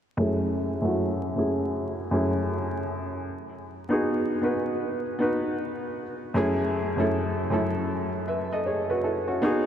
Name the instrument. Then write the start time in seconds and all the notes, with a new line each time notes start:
felt piano
0.17 F#2 A3 C#4 E4 G#4
0.81 F#2 A3 C#4 E4 F#4
1.35 F#2 A3 C#4 E4 G#4
2.11 F#2 A3 C#4 E4 G#4
3.89 B3 D#4 F#4 G#4
4.41 B3 D#4 F#4 B4
5.19 B3 D#4 F#4 B4
6.34 F#2 A3 C#4 E4 G#4
6.97 F#2 A3 C#4 E4 A4
7.50 F#2 A3 C#4 E4 A4
8.28 B4 E5
8.52 A4 D#5
8.66 G#4 C#5
8.90 F#4 B4
9.04 E4 A4
9.27 C#4 F#4
9.42 B3 D#4 F#4 G#4